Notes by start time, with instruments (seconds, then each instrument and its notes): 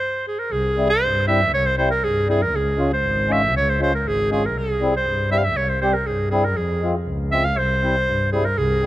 Already playing: clarinet C5
0.28 clarinet G#4
0.39 clarinet A#4
0.51 double bass C2, clarinet G#4
0.77 accordion G3 C4 E4
0.90 clarinet C5
1.03 double bass G2
1.27 accordion G3 C4 E4, clarinet E5
1.52 double bass C2, clarinet C#5
1.66 clarinet C5
1.77 accordion G3 C4 E4, clarinet C5
1.91 clarinet A#4
2.03 double bass G2, clarinet G#4
2.28 accordion G3 C4 E4, clarinet G#4
2.42 clarinet A#4
2.53 double bass C#2, clarinet G#4
2.77 accordion G#3 C#4 F4
2.93 clarinet C5
3.03 double bass G#1
3.28 accordion G#3 C#4 F4
3.32 clarinet E5
3.54 double bass C#2, clarinet C#5
3.70 clarinet C5
3.79 accordion G#3 C#4 F4
3.83 clarinet C5
3.95 clarinet A#4
4.04 double bass G#1, clarinet G#4
4.30 accordion G#3 C#4 F4, clarinet G#4
4.46 clarinet A#4
4.54 double bass C2, clarinet G#4
4.81 accordion G3 C4 E4
4.96 clarinet C5
5.04 double bass G2
5.30 accordion G3 C4 E4, clarinet E5
5.38 clarinet F5
5.44 clarinet E5
5.55 double bass C2, clarinet C#5
5.69 clarinet C5
5.81 accordion G3 C4 G4, clarinet C5
5.94 clarinet A#4
6.06 double bass G2, clarinet G#4
6.31 accordion G3 C4 E4, clarinet G#4
6.45 clarinet A#4
6.56 double bass F2, clarinet G#4
6.82 accordion G#3 C4 F4
7.07 double bass C#2
7.31 accordion G#3 C4 F4, clarinet E5
7.45 clarinet F5
7.58 double bass C2, clarinet C5
7.83 accordion G3 C4 E4
8.07 double bass G2
8.32 accordion G3 C4 E4, clarinet G#4
8.45 clarinet A#4
8.58 double bass C2, clarinet G#4
8.83 accordion G3 C4